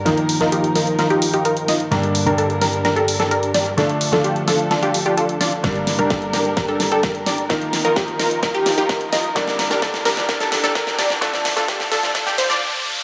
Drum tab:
HH |xxoxxxoxxxoxxxox|xxoxxxoxxxoxxxox|xxoxxxoxxxoxxxox|xxoxxxoxxxoxxxox|
SD |o--o--o-o-----o-|o-----o-o--o--o-|o--o--o-o-----o-|o-o-o-o-o-o-o-o-|
BD |----------------|----------------|----------------|o---o---o---o---|

HH |xxoxxxoxxxoxxxox|xxoxxxoxxxoxxxo-|xxo-xxoxxxox----|
SD |o-o-o-o-o-o-o-o-|oooooooooooooooo|oooooooooooo----|
BD |o---o---o---o---|o---o---o---o---|o---o---o-------|